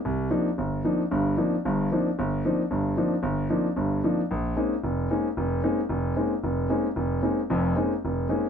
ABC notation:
X:1
M:4/4
L:1/8
Q:"Swing" 1/4=226
K:Cm
V:1 name="Grand piano"
C,,2 [F,B,CDE] z G,,,2 [F,B,CDE] z | [G,,,G,,]2 [F,B,CDE] z [G,,,G,,]2 [F,B,CDE] z | G,,,2 [F,B,CDE] z [G,,,G,,]2 [F,B,CDE] z | G,,,2 [F,B,CDE] z [G,,,G,,]2 [F,B,CDE] z |
B,,,2 [A,B,C_DE] z F,,,2 [A,B,CDE] z | F,,,2 [A,B,C_DE] z F,,,2 [A,B,CDE] z | F,,,2 [A,B,C_DE] z F,,,2 [A,B,CDE] z | [F,,,F,,]2 [A,B,C_DE] z F,,,2 [A,B,CDE] z |]